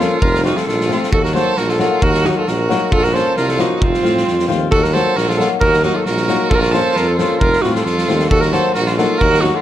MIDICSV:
0, 0, Header, 1, 6, 480
1, 0, Start_track
1, 0, Tempo, 450113
1, 232, Time_signature, 2, 2, 24, 8
1, 10254, End_track
2, 0, Start_track
2, 0, Title_t, "Alto saxophone"
2, 0, Program_c, 0, 65
2, 11, Note_on_c, 0, 69, 89
2, 232, Note_on_c, 0, 70, 116
2, 248, Note_off_c, 0, 69, 0
2, 466, Note_off_c, 0, 70, 0
2, 472, Note_on_c, 0, 66, 78
2, 613, Note_on_c, 0, 69, 72
2, 629, Note_off_c, 0, 66, 0
2, 709, Note_off_c, 0, 69, 0
2, 715, Note_on_c, 0, 69, 84
2, 1163, Note_off_c, 0, 69, 0
2, 1206, Note_on_c, 0, 69, 106
2, 1320, Note_off_c, 0, 69, 0
2, 1327, Note_on_c, 0, 70, 69
2, 1427, Note_off_c, 0, 70, 0
2, 1433, Note_on_c, 0, 72, 80
2, 1680, Note_on_c, 0, 70, 77
2, 1696, Note_off_c, 0, 72, 0
2, 1807, Note_on_c, 0, 69, 85
2, 1823, Note_off_c, 0, 70, 0
2, 1919, Note_off_c, 0, 69, 0
2, 1932, Note_on_c, 0, 69, 93
2, 2154, Note_on_c, 0, 70, 116
2, 2170, Note_off_c, 0, 69, 0
2, 2415, Note_on_c, 0, 66, 75
2, 2431, Note_off_c, 0, 70, 0
2, 2533, Note_off_c, 0, 66, 0
2, 2540, Note_on_c, 0, 69, 73
2, 2650, Note_on_c, 0, 70, 73
2, 2666, Note_off_c, 0, 69, 0
2, 3114, Note_on_c, 0, 69, 110
2, 3130, Note_off_c, 0, 70, 0
2, 3243, Note_on_c, 0, 70, 73
2, 3259, Note_off_c, 0, 69, 0
2, 3345, Note_on_c, 0, 72, 81
2, 3361, Note_off_c, 0, 70, 0
2, 3593, Note_off_c, 0, 72, 0
2, 3600, Note_on_c, 0, 70, 76
2, 3734, Note_on_c, 0, 69, 73
2, 3750, Note_off_c, 0, 70, 0
2, 3847, Note_on_c, 0, 66, 78
2, 3863, Note_off_c, 0, 69, 0
2, 4088, Note_on_c, 0, 65, 96
2, 4104, Note_off_c, 0, 66, 0
2, 4804, Note_off_c, 0, 65, 0
2, 5030, Note_on_c, 0, 69, 127
2, 5157, Note_on_c, 0, 70, 80
2, 5173, Note_off_c, 0, 69, 0
2, 5266, Note_on_c, 0, 72, 84
2, 5282, Note_off_c, 0, 70, 0
2, 5506, Note_on_c, 0, 70, 80
2, 5522, Note_off_c, 0, 72, 0
2, 5633, Note_on_c, 0, 69, 72
2, 5649, Note_off_c, 0, 70, 0
2, 5723, Note_off_c, 0, 69, 0
2, 5729, Note_on_c, 0, 69, 85
2, 5844, Note_off_c, 0, 69, 0
2, 5980, Note_on_c, 0, 70, 127
2, 6211, Note_off_c, 0, 70, 0
2, 6235, Note_on_c, 0, 66, 89
2, 6363, Note_on_c, 0, 69, 82
2, 6379, Note_off_c, 0, 66, 0
2, 6454, Note_off_c, 0, 69, 0
2, 6461, Note_on_c, 0, 70, 90
2, 6927, Note_on_c, 0, 69, 127
2, 6943, Note_off_c, 0, 70, 0
2, 6986, Note_on_c, 0, 70, 102
2, 7002, Note_off_c, 0, 69, 0
2, 7012, Note_off_c, 0, 70, 0
2, 7060, Note_on_c, 0, 70, 75
2, 7186, Note_on_c, 0, 72, 88
2, 7202, Note_off_c, 0, 70, 0
2, 7428, Note_on_c, 0, 70, 88
2, 7444, Note_off_c, 0, 72, 0
2, 7551, Note_on_c, 0, 69, 87
2, 7567, Note_off_c, 0, 70, 0
2, 7657, Note_off_c, 0, 69, 0
2, 7663, Note_on_c, 0, 69, 86
2, 7888, Note_on_c, 0, 70, 107
2, 7904, Note_off_c, 0, 69, 0
2, 8125, Note_on_c, 0, 66, 90
2, 8141, Note_off_c, 0, 70, 0
2, 8267, Note_off_c, 0, 66, 0
2, 8272, Note_on_c, 0, 69, 75
2, 8374, Note_off_c, 0, 69, 0
2, 8381, Note_on_c, 0, 69, 81
2, 8833, Note_off_c, 0, 69, 0
2, 8854, Note_on_c, 0, 69, 124
2, 8970, Note_on_c, 0, 70, 83
2, 8986, Note_off_c, 0, 69, 0
2, 9091, Note_on_c, 0, 72, 82
2, 9107, Note_off_c, 0, 70, 0
2, 9323, Note_off_c, 0, 72, 0
2, 9329, Note_on_c, 0, 70, 73
2, 9436, Note_off_c, 0, 70, 0
2, 9436, Note_on_c, 0, 70, 59
2, 9463, Note_off_c, 0, 70, 0
2, 9568, Note_on_c, 0, 69, 92
2, 9796, Note_on_c, 0, 70, 118
2, 9812, Note_off_c, 0, 69, 0
2, 10034, Note_on_c, 0, 66, 90
2, 10050, Note_off_c, 0, 70, 0
2, 10183, Note_on_c, 0, 69, 66
2, 10199, Note_off_c, 0, 66, 0
2, 10254, Note_off_c, 0, 69, 0
2, 10254, End_track
3, 0, Start_track
3, 0, Title_t, "Violin"
3, 0, Program_c, 1, 40
3, 0, Note_on_c, 1, 65, 72
3, 235, Note_off_c, 1, 65, 0
3, 235, Note_on_c, 1, 65, 94
3, 467, Note_off_c, 1, 65, 0
3, 473, Note_on_c, 1, 63, 75
3, 601, Note_on_c, 1, 65, 60
3, 617, Note_off_c, 1, 63, 0
3, 708, Note_off_c, 1, 65, 0
3, 714, Note_on_c, 1, 65, 70
3, 1162, Note_off_c, 1, 65, 0
3, 1190, Note_on_c, 1, 66, 75
3, 1311, Note_off_c, 1, 66, 0
3, 1316, Note_on_c, 1, 66, 73
3, 1425, Note_off_c, 1, 66, 0
3, 1439, Note_on_c, 1, 69, 77
3, 1682, Note_on_c, 1, 66, 72
3, 1698, Note_off_c, 1, 69, 0
3, 1804, Note_on_c, 1, 65, 72
3, 1820, Note_off_c, 1, 66, 0
3, 1917, Note_off_c, 1, 65, 0
3, 1928, Note_on_c, 1, 65, 71
3, 2156, Note_on_c, 1, 66, 92
3, 2172, Note_off_c, 1, 65, 0
3, 2401, Note_on_c, 1, 63, 61
3, 2417, Note_off_c, 1, 66, 0
3, 2520, Note_off_c, 1, 63, 0
3, 2526, Note_on_c, 1, 65, 64
3, 2635, Note_on_c, 1, 66, 73
3, 2651, Note_off_c, 1, 65, 0
3, 3112, Note_on_c, 1, 65, 100
3, 3128, Note_off_c, 1, 66, 0
3, 3233, Note_on_c, 1, 66, 69
3, 3249, Note_off_c, 1, 65, 0
3, 3358, Note_on_c, 1, 69, 74
3, 3374, Note_off_c, 1, 66, 0
3, 3591, Note_off_c, 1, 69, 0
3, 3597, Note_on_c, 1, 65, 70
3, 3719, Note_off_c, 1, 65, 0
3, 3719, Note_on_c, 1, 65, 78
3, 3838, Note_on_c, 1, 63, 65
3, 3854, Note_off_c, 1, 65, 0
3, 4063, Note_on_c, 1, 60, 81
3, 4079, Note_off_c, 1, 63, 0
3, 4791, Note_off_c, 1, 60, 0
3, 5027, Note_on_c, 1, 66, 96
3, 5149, Note_off_c, 1, 66, 0
3, 5149, Note_on_c, 1, 66, 79
3, 5262, Note_on_c, 1, 69, 85
3, 5278, Note_off_c, 1, 66, 0
3, 5507, Note_on_c, 1, 66, 82
3, 5523, Note_off_c, 1, 69, 0
3, 5643, Note_on_c, 1, 65, 78
3, 5659, Note_off_c, 1, 66, 0
3, 5748, Note_off_c, 1, 65, 0
3, 5755, Note_on_c, 1, 65, 71
3, 5863, Note_off_c, 1, 65, 0
3, 5975, Note_on_c, 1, 66, 92
3, 6209, Note_off_c, 1, 66, 0
3, 6217, Note_on_c, 1, 63, 78
3, 6335, Note_on_c, 1, 65, 65
3, 6351, Note_off_c, 1, 63, 0
3, 6441, Note_off_c, 1, 65, 0
3, 6447, Note_on_c, 1, 66, 79
3, 6928, Note_on_c, 1, 65, 103
3, 6944, Note_off_c, 1, 66, 0
3, 6969, Note_on_c, 1, 66, 82
3, 6972, Note_off_c, 1, 65, 0
3, 6972, Note_on_c, 1, 65, 99
3, 6988, Note_off_c, 1, 66, 0
3, 7045, Note_on_c, 1, 66, 82
3, 7061, Note_off_c, 1, 65, 0
3, 7161, Note_on_c, 1, 69, 89
3, 7177, Note_off_c, 1, 66, 0
3, 7386, Note_on_c, 1, 65, 81
3, 7402, Note_off_c, 1, 69, 0
3, 7515, Note_off_c, 1, 65, 0
3, 7515, Note_on_c, 1, 65, 90
3, 7626, Note_off_c, 1, 65, 0
3, 7633, Note_on_c, 1, 65, 76
3, 7871, Note_off_c, 1, 65, 0
3, 7871, Note_on_c, 1, 65, 90
3, 8114, Note_on_c, 1, 63, 59
3, 8130, Note_off_c, 1, 65, 0
3, 8236, Note_off_c, 1, 63, 0
3, 8243, Note_on_c, 1, 65, 65
3, 8343, Note_off_c, 1, 65, 0
3, 8350, Note_on_c, 1, 65, 74
3, 8816, Note_off_c, 1, 65, 0
3, 8847, Note_on_c, 1, 66, 82
3, 8980, Note_off_c, 1, 66, 0
3, 8980, Note_on_c, 1, 66, 75
3, 9096, Note_on_c, 1, 69, 75
3, 9112, Note_off_c, 1, 66, 0
3, 9318, Note_off_c, 1, 69, 0
3, 9324, Note_on_c, 1, 66, 85
3, 9449, Note_off_c, 1, 66, 0
3, 9449, Note_on_c, 1, 66, 53
3, 9457, Note_on_c, 1, 65, 73
3, 9473, Note_off_c, 1, 66, 0
3, 9559, Note_off_c, 1, 65, 0
3, 9565, Note_on_c, 1, 65, 80
3, 9812, Note_on_c, 1, 66, 100
3, 9828, Note_off_c, 1, 65, 0
3, 10054, Note_on_c, 1, 63, 74
3, 10070, Note_off_c, 1, 66, 0
3, 10191, Note_on_c, 1, 65, 76
3, 10207, Note_off_c, 1, 63, 0
3, 10254, Note_off_c, 1, 65, 0
3, 10254, End_track
4, 0, Start_track
4, 0, Title_t, "Nylon-string guitar"
4, 0, Program_c, 2, 24
4, 0, Note_on_c, 2, 53, 64
4, 0, Note_on_c, 2, 58, 60
4, 0, Note_on_c, 2, 61, 57
4, 0, Note_on_c, 2, 65, 72
4, 176, Note_off_c, 2, 53, 0
4, 181, Note_off_c, 2, 58, 0
4, 185, Note_off_c, 2, 61, 0
4, 188, Note_off_c, 2, 65, 0
4, 460, Note_on_c, 2, 53, 50
4, 464, Note_on_c, 2, 57, 50
4, 472, Note_on_c, 2, 60, 55
4, 476, Note_on_c, 2, 65, 67
4, 661, Note_off_c, 2, 53, 0
4, 664, Note_off_c, 2, 57, 0
4, 668, Note_off_c, 2, 60, 0
4, 668, Note_off_c, 2, 65, 0
4, 946, Note_on_c, 2, 53, 70
4, 955, Note_on_c, 2, 57, 60
4, 964, Note_on_c, 2, 60, 61
4, 968, Note_on_c, 2, 65, 63
4, 1145, Note_off_c, 2, 53, 0
4, 1150, Note_off_c, 2, 57, 0
4, 1154, Note_off_c, 2, 60, 0
4, 1156, Note_off_c, 2, 65, 0
4, 1423, Note_on_c, 2, 54, 61
4, 1430, Note_on_c, 2, 58, 54
4, 1438, Note_on_c, 2, 63, 50
4, 1445, Note_on_c, 2, 66, 68
4, 1625, Note_off_c, 2, 54, 0
4, 1629, Note_off_c, 2, 58, 0
4, 1630, Note_off_c, 2, 63, 0
4, 1635, Note_off_c, 2, 66, 0
4, 1906, Note_on_c, 2, 54, 67
4, 1913, Note_on_c, 2, 58, 60
4, 1915, Note_on_c, 2, 63, 58
4, 1927, Note_on_c, 2, 66, 62
4, 2107, Note_off_c, 2, 54, 0
4, 2108, Note_off_c, 2, 58, 0
4, 2111, Note_off_c, 2, 63, 0
4, 2117, Note_off_c, 2, 66, 0
4, 2389, Note_on_c, 2, 54, 60
4, 2395, Note_on_c, 2, 58, 48
4, 2401, Note_on_c, 2, 63, 50
4, 2408, Note_on_c, 2, 66, 69
4, 2588, Note_off_c, 2, 54, 0
4, 2591, Note_off_c, 2, 58, 0
4, 2594, Note_off_c, 2, 63, 0
4, 2598, Note_off_c, 2, 66, 0
4, 2869, Note_on_c, 2, 54, 67
4, 2879, Note_on_c, 2, 58, 68
4, 2882, Note_on_c, 2, 63, 66
4, 2888, Note_on_c, 2, 66, 81
4, 3069, Note_off_c, 2, 54, 0
4, 3071, Note_off_c, 2, 58, 0
4, 3076, Note_off_c, 2, 63, 0
4, 3077, Note_off_c, 2, 66, 0
4, 3346, Note_on_c, 2, 53, 57
4, 3352, Note_on_c, 2, 58, 51
4, 3361, Note_on_c, 2, 61, 55
4, 3368, Note_on_c, 2, 65, 61
4, 3548, Note_off_c, 2, 53, 0
4, 3549, Note_off_c, 2, 58, 0
4, 3555, Note_off_c, 2, 61, 0
4, 3558, Note_off_c, 2, 65, 0
4, 3821, Note_on_c, 2, 53, 65
4, 3824, Note_on_c, 2, 58, 54
4, 3832, Note_on_c, 2, 61, 57
4, 3839, Note_on_c, 2, 65, 77
4, 4025, Note_off_c, 2, 53, 0
4, 4026, Note_off_c, 2, 58, 0
4, 4031, Note_off_c, 2, 61, 0
4, 4033, Note_off_c, 2, 65, 0
4, 4294, Note_on_c, 2, 53, 61
4, 4302, Note_on_c, 2, 57, 49
4, 4310, Note_on_c, 2, 60, 55
4, 4317, Note_on_c, 2, 65, 60
4, 4501, Note_off_c, 2, 53, 0
4, 4506, Note_off_c, 2, 57, 0
4, 4509, Note_off_c, 2, 60, 0
4, 4513, Note_off_c, 2, 65, 0
4, 4779, Note_on_c, 2, 53, 74
4, 4785, Note_on_c, 2, 57, 62
4, 4790, Note_on_c, 2, 60, 73
4, 4797, Note_on_c, 2, 65, 79
4, 4983, Note_off_c, 2, 53, 0
4, 4987, Note_off_c, 2, 57, 0
4, 4989, Note_off_c, 2, 60, 0
4, 4993, Note_off_c, 2, 65, 0
4, 5269, Note_on_c, 2, 54, 64
4, 5274, Note_on_c, 2, 58, 57
4, 5283, Note_on_c, 2, 63, 47
4, 5289, Note_on_c, 2, 66, 68
4, 5469, Note_off_c, 2, 54, 0
4, 5470, Note_off_c, 2, 58, 0
4, 5476, Note_off_c, 2, 63, 0
4, 5477, Note_off_c, 2, 66, 0
4, 5736, Note_on_c, 2, 54, 59
4, 5747, Note_on_c, 2, 58, 55
4, 5754, Note_on_c, 2, 63, 56
4, 5760, Note_on_c, 2, 66, 69
4, 5942, Note_off_c, 2, 54, 0
4, 5947, Note_off_c, 2, 58, 0
4, 5951, Note_off_c, 2, 63, 0
4, 5953, Note_off_c, 2, 66, 0
4, 6227, Note_on_c, 2, 54, 54
4, 6234, Note_on_c, 2, 58, 51
4, 6238, Note_on_c, 2, 63, 57
4, 6244, Note_on_c, 2, 66, 64
4, 6427, Note_off_c, 2, 54, 0
4, 6429, Note_off_c, 2, 58, 0
4, 6432, Note_off_c, 2, 63, 0
4, 6435, Note_off_c, 2, 66, 0
4, 6699, Note_on_c, 2, 54, 67
4, 6705, Note_on_c, 2, 58, 63
4, 6711, Note_on_c, 2, 63, 57
4, 6718, Note_on_c, 2, 66, 73
4, 6903, Note_off_c, 2, 54, 0
4, 6905, Note_off_c, 2, 58, 0
4, 6908, Note_off_c, 2, 63, 0
4, 6912, Note_off_c, 2, 66, 0
4, 7178, Note_on_c, 2, 53, 58
4, 7186, Note_on_c, 2, 58, 48
4, 7193, Note_on_c, 2, 61, 61
4, 7200, Note_on_c, 2, 65, 69
4, 7382, Note_off_c, 2, 53, 0
4, 7386, Note_off_c, 2, 58, 0
4, 7389, Note_off_c, 2, 61, 0
4, 7392, Note_off_c, 2, 65, 0
4, 7666, Note_on_c, 2, 53, 64
4, 7671, Note_on_c, 2, 58, 57
4, 7677, Note_on_c, 2, 61, 60
4, 7684, Note_on_c, 2, 65, 73
4, 7865, Note_off_c, 2, 53, 0
4, 7868, Note_off_c, 2, 58, 0
4, 7871, Note_off_c, 2, 61, 0
4, 7874, Note_off_c, 2, 65, 0
4, 8138, Note_on_c, 2, 53, 56
4, 8145, Note_on_c, 2, 57, 46
4, 8153, Note_on_c, 2, 60, 54
4, 8158, Note_on_c, 2, 65, 62
4, 8341, Note_off_c, 2, 53, 0
4, 8344, Note_off_c, 2, 57, 0
4, 8348, Note_off_c, 2, 60, 0
4, 8351, Note_off_c, 2, 65, 0
4, 8610, Note_on_c, 2, 53, 65
4, 8619, Note_on_c, 2, 57, 56
4, 8626, Note_on_c, 2, 60, 59
4, 8636, Note_on_c, 2, 65, 60
4, 8816, Note_off_c, 2, 53, 0
4, 8821, Note_off_c, 2, 57, 0
4, 8824, Note_off_c, 2, 60, 0
4, 8829, Note_off_c, 2, 65, 0
4, 9093, Note_on_c, 2, 54, 58
4, 9100, Note_on_c, 2, 58, 56
4, 9105, Note_on_c, 2, 63, 48
4, 9112, Note_on_c, 2, 66, 66
4, 9297, Note_off_c, 2, 54, 0
4, 9301, Note_off_c, 2, 58, 0
4, 9303, Note_off_c, 2, 63, 0
4, 9307, Note_off_c, 2, 66, 0
4, 9571, Note_on_c, 2, 54, 64
4, 9578, Note_on_c, 2, 58, 61
4, 9586, Note_on_c, 2, 63, 64
4, 9592, Note_on_c, 2, 66, 71
4, 9776, Note_off_c, 2, 54, 0
4, 9780, Note_off_c, 2, 58, 0
4, 9782, Note_off_c, 2, 63, 0
4, 9786, Note_off_c, 2, 66, 0
4, 10060, Note_on_c, 2, 54, 59
4, 10067, Note_on_c, 2, 58, 55
4, 10072, Note_on_c, 2, 63, 50
4, 10079, Note_on_c, 2, 66, 70
4, 10254, Note_off_c, 2, 54, 0
4, 10254, Note_off_c, 2, 58, 0
4, 10254, Note_off_c, 2, 63, 0
4, 10254, Note_off_c, 2, 66, 0
4, 10254, End_track
5, 0, Start_track
5, 0, Title_t, "Tuba"
5, 0, Program_c, 3, 58
5, 231, Note_on_c, 3, 29, 111
5, 520, Note_off_c, 3, 29, 0
5, 712, Note_on_c, 3, 34, 88
5, 1001, Note_off_c, 3, 34, 0
5, 1189, Note_on_c, 3, 39, 84
5, 1480, Note_off_c, 3, 39, 0
5, 1688, Note_on_c, 3, 34, 82
5, 1973, Note_off_c, 3, 34, 0
5, 2160, Note_on_c, 3, 39, 106
5, 2448, Note_off_c, 3, 39, 0
5, 2631, Note_on_c, 3, 34, 87
5, 2922, Note_off_c, 3, 34, 0
5, 3107, Note_on_c, 3, 34, 94
5, 3399, Note_off_c, 3, 34, 0
5, 3590, Note_on_c, 3, 36, 87
5, 3881, Note_off_c, 3, 36, 0
5, 4064, Note_on_c, 3, 29, 92
5, 4213, Note_off_c, 3, 29, 0
5, 4308, Note_on_c, 3, 45, 68
5, 4529, Note_off_c, 3, 45, 0
5, 4553, Note_on_c, 3, 41, 81
5, 4772, Note_off_c, 3, 41, 0
5, 4788, Note_on_c, 3, 39, 76
5, 5009, Note_off_c, 3, 39, 0
5, 5019, Note_on_c, 3, 39, 98
5, 5313, Note_off_c, 3, 39, 0
5, 5503, Note_on_c, 3, 34, 89
5, 5796, Note_off_c, 3, 34, 0
5, 5987, Note_on_c, 3, 39, 106
5, 6278, Note_off_c, 3, 39, 0
5, 6473, Note_on_c, 3, 34, 90
5, 6762, Note_off_c, 3, 34, 0
5, 6952, Note_on_c, 3, 34, 114
5, 7241, Note_off_c, 3, 34, 0
5, 7429, Note_on_c, 3, 41, 89
5, 7719, Note_off_c, 3, 41, 0
5, 7899, Note_on_c, 3, 29, 98
5, 8048, Note_off_c, 3, 29, 0
5, 8143, Note_on_c, 3, 45, 74
5, 8364, Note_off_c, 3, 45, 0
5, 8378, Note_on_c, 3, 41, 81
5, 8601, Note_off_c, 3, 41, 0
5, 8627, Note_on_c, 3, 39, 91
5, 8846, Note_off_c, 3, 39, 0
5, 8859, Note_on_c, 3, 39, 94
5, 9151, Note_off_c, 3, 39, 0
5, 9347, Note_on_c, 3, 34, 91
5, 9636, Note_off_c, 3, 34, 0
5, 9825, Note_on_c, 3, 39, 99
5, 10115, Note_off_c, 3, 39, 0
5, 10254, End_track
6, 0, Start_track
6, 0, Title_t, "Drums"
6, 2, Note_on_c, 9, 38, 28
6, 109, Note_off_c, 9, 38, 0
6, 235, Note_on_c, 9, 36, 91
6, 342, Note_off_c, 9, 36, 0
6, 371, Note_on_c, 9, 38, 28
6, 478, Note_off_c, 9, 38, 0
6, 484, Note_on_c, 9, 38, 27
6, 590, Note_off_c, 9, 38, 0
6, 610, Note_on_c, 9, 38, 27
6, 716, Note_off_c, 9, 38, 0
6, 731, Note_on_c, 9, 38, 26
6, 838, Note_off_c, 9, 38, 0
6, 861, Note_on_c, 9, 38, 28
6, 967, Note_off_c, 9, 38, 0
6, 971, Note_on_c, 9, 38, 27
6, 1077, Note_off_c, 9, 38, 0
6, 1099, Note_on_c, 9, 38, 23
6, 1201, Note_on_c, 9, 36, 98
6, 1206, Note_off_c, 9, 38, 0
6, 1307, Note_off_c, 9, 36, 0
6, 1335, Note_on_c, 9, 38, 25
6, 1442, Note_off_c, 9, 38, 0
6, 1444, Note_on_c, 9, 38, 23
6, 1550, Note_off_c, 9, 38, 0
6, 1674, Note_on_c, 9, 38, 26
6, 1781, Note_off_c, 9, 38, 0
6, 1801, Note_on_c, 9, 38, 25
6, 1908, Note_off_c, 9, 38, 0
6, 1915, Note_on_c, 9, 38, 27
6, 2021, Note_off_c, 9, 38, 0
6, 2156, Note_on_c, 9, 36, 86
6, 2263, Note_off_c, 9, 36, 0
6, 2283, Note_on_c, 9, 38, 24
6, 2389, Note_off_c, 9, 38, 0
6, 2399, Note_on_c, 9, 38, 25
6, 2506, Note_off_c, 9, 38, 0
6, 2640, Note_on_c, 9, 38, 26
6, 2747, Note_off_c, 9, 38, 0
6, 2881, Note_on_c, 9, 38, 29
6, 2988, Note_off_c, 9, 38, 0
6, 3115, Note_on_c, 9, 36, 85
6, 3222, Note_off_c, 9, 36, 0
6, 3242, Note_on_c, 9, 38, 23
6, 3349, Note_off_c, 9, 38, 0
6, 3359, Note_on_c, 9, 38, 29
6, 3466, Note_off_c, 9, 38, 0
6, 3591, Note_on_c, 9, 38, 28
6, 3698, Note_off_c, 9, 38, 0
6, 3716, Note_on_c, 9, 38, 30
6, 3823, Note_off_c, 9, 38, 0
6, 3825, Note_on_c, 9, 38, 33
6, 3931, Note_off_c, 9, 38, 0
6, 4071, Note_on_c, 9, 36, 96
6, 4178, Note_off_c, 9, 36, 0
6, 4202, Note_on_c, 9, 38, 26
6, 4308, Note_off_c, 9, 38, 0
6, 4316, Note_on_c, 9, 38, 27
6, 4422, Note_off_c, 9, 38, 0
6, 4450, Note_on_c, 9, 38, 24
6, 4556, Note_off_c, 9, 38, 0
6, 4559, Note_on_c, 9, 38, 29
6, 4666, Note_off_c, 9, 38, 0
6, 4686, Note_on_c, 9, 38, 26
6, 4793, Note_off_c, 9, 38, 0
6, 4805, Note_on_c, 9, 38, 31
6, 4912, Note_off_c, 9, 38, 0
6, 5033, Note_on_c, 9, 36, 87
6, 5140, Note_off_c, 9, 36, 0
6, 5165, Note_on_c, 9, 38, 28
6, 5272, Note_off_c, 9, 38, 0
6, 5278, Note_on_c, 9, 38, 28
6, 5384, Note_off_c, 9, 38, 0
6, 5523, Note_on_c, 9, 38, 29
6, 5630, Note_off_c, 9, 38, 0
6, 5651, Note_on_c, 9, 38, 27
6, 5757, Note_off_c, 9, 38, 0
6, 5760, Note_on_c, 9, 38, 33
6, 5866, Note_off_c, 9, 38, 0
6, 5987, Note_on_c, 9, 36, 89
6, 6094, Note_off_c, 9, 36, 0
6, 6117, Note_on_c, 9, 38, 27
6, 6217, Note_off_c, 9, 38, 0
6, 6217, Note_on_c, 9, 38, 26
6, 6324, Note_off_c, 9, 38, 0
6, 6461, Note_on_c, 9, 38, 29
6, 6568, Note_off_c, 9, 38, 0
6, 6581, Note_on_c, 9, 38, 28
6, 6687, Note_off_c, 9, 38, 0
6, 6700, Note_on_c, 9, 38, 30
6, 6806, Note_off_c, 9, 38, 0
6, 6943, Note_on_c, 9, 36, 97
6, 7050, Note_off_c, 9, 36, 0
6, 7067, Note_on_c, 9, 38, 27
6, 7173, Note_off_c, 9, 38, 0
6, 7178, Note_on_c, 9, 38, 26
6, 7285, Note_off_c, 9, 38, 0
6, 7422, Note_on_c, 9, 38, 29
6, 7528, Note_off_c, 9, 38, 0
6, 7662, Note_on_c, 9, 38, 30
6, 7769, Note_off_c, 9, 38, 0
6, 7905, Note_on_c, 9, 36, 89
6, 8012, Note_off_c, 9, 36, 0
6, 8029, Note_on_c, 9, 38, 25
6, 8136, Note_off_c, 9, 38, 0
6, 8145, Note_on_c, 9, 38, 23
6, 8251, Note_off_c, 9, 38, 0
6, 8266, Note_on_c, 9, 38, 26
6, 8373, Note_off_c, 9, 38, 0
6, 8381, Note_on_c, 9, 38, 25
6, 8488, Note_off_c, 9, 38, 0
6, 8511, Note_on_c, 9, 38, 28
6, 8618, Note_off_c, 9, 38, 0
6, 8623, Note_on_c, 9, 38, 28
6, 8730, Note_off_c, 9, 38, 0
6, 8738, Note_on_c, 9, 38, 23
6, 8844, Note_off_c, 9, 38, 0
6, 8862, Note_on_c, 9, 36, 92
6, 8969, Note_off_c, 9, 36, 0
6, 8980, Note_on_c, 9, 38, 23
6, 9087, Note_off_c, 9, 38, 0
6, 9094, Note_on_c, 9, 38, 25
6, 9201, Note_off_c, 9, 38, 0
6, 9329, Note_on_c, 9, 38, 28
6, 9435, Note_off_c, 9, 38, 0
6, 9459, Note_on_c, 9, 38, 27
6, 9566, Note_off_c, 9, 38, 0
6, 9577, Note_on_c, 9, 38, 26
6, 9684, Note_off_c, 9, 38, 0
6, 9823, Note_on_c, 9, 36, 73
6, 9930, Note_off_c, 9, 36, 0
6, 9956, Note_on_c, 9, 38, 23
6, 10063, Note_off_c, 9, 38, 0
6, 10068, Note_on_c, 9, 38, 22
6, 10174, Note_off_c, 9, 38, 0
6, 10254, End_track
0, 0, End_of_file